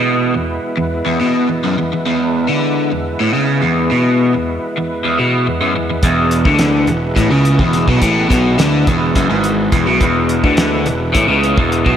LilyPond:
<<
  \new Staff \with { instrumentName = "Tonewheel organ" } { \time 7/8 \key e \mixolydian \tempo 4 = 105 <gis b e' b'>2.~ <gis b e' b'>8~ | <gis b e' b'>2.~ <gis b e' b'>8~ | <gis b e' b'>2.~ <gis b e' b'>8~ | <gis b e' b'>2.~ <gis b e' b'>8~ |
<gis b e' b'>2.~ <gis b e' b'>8~ | <gis b e' b'>2.~ <gis b e' b'>8 | }
  \new Staff \with { instrumentName = "Overdriven electric guitar" } { \clef bass \time 7/8 \key e \mixolydian b,8 e,8 r16 e,8 e,16 b,8 e,16 fis,16 e,16 e,16 | e,8. d8. e,8 a,16 cis8 e,8 b,16~ | b,8 e,8 r16 e,8 e,16 b,8 e,16 fis,16 e,16 e,16 | e,8. d8. e,8 a,16 cis8 e,8 b,16 |
a,8 b,8 d8 e,8 fis,16 gis,8. e,16 b,16 | e,8. d8. e,8 a,16 cis8 e,8 b,16 | }
  \new Staff \with { instrumentName = "Picked electric bass" } { \clef bass \time 7/8 \key e \mixolydian r2. r8 | r2. r8 | r2. r8 | e,,8. d,8. e,,8 a,,16 cis,8 e,,8 b,,16 |
a,,8 b,,8 d,8 e,,8 fis,,16 gis,,8. e,,16 b,,16 | e,,8. d,8. e,,8 a,,16 cis,8 e,,8 b,,16 | }
  \new DrumStaff \with { instrumentName = "Drums" } \drummode { \time 7/8 r4 r4 r4. | r4 r4 r4. | r4 r4 r4. | <hh bd>8 hh16 bd16 <hh sn>8 hh8 <hh bd sn>8 hh16 bd16 <hh sn>16 bd16 |
<hh bd>8 <hh bd sn>8 <hh sn>8 <hh bd>8 <hh bd sn>8 hh8 <hh bd sn>8 | <hh bd>8 hh16 bd16 <hh sn>8 hh8 <hh bd>8 hh16 bd16 hh16 bd16 | }
>>